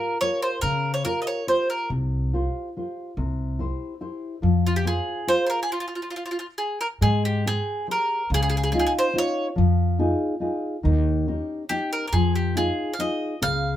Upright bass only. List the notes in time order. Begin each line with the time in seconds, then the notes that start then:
0.63 C#3
1.90 C2
3.17 C2
4.43 F2
7.01 G#2
8.30 C#2
9.58 F2
10.85 D#2
12.13 F2
13.42 C#2